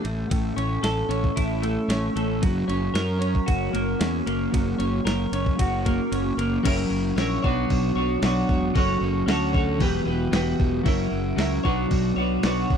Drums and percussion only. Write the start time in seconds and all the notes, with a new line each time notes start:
0.05 ride
0.31 kick, ride
0.58 ride
0.84 snare, ride
0.98 snare
1.11 ride
1.24 kick
1.37 kick, ride
1.63 ride
1.90 snare, ride
2.17 ride
2.43 kick, ride
2.70 ride
2.95 snare, ride
3.22 ride
3.35 kick
3.48 kick, ride
3.75 ride
4.01 snare, ride
4.27 ride
4.54 kick, ride
4.80 ride
5.07 snare, ride
5.33 ride
5.46 kick
5.59 kick, ride
5.86 kick, ride
6.12 ride
6.39 ride
6.65 kick, crash
6.79 snare
7.18 snare, crash
7.44 kick
7.70 kick, crash
8.22 snare, crash
8.49 kick
8.75 kick, crash
8.89 snare
9.28 snare, crash
9.54 kick
9.80 kick, crash
10.33 snare, crash
10.60 kick
10.86 kick, crash
11.38 snare, crash
11.65 kick
11.91 kick, crash
12.43 snare, crash
12.70 kick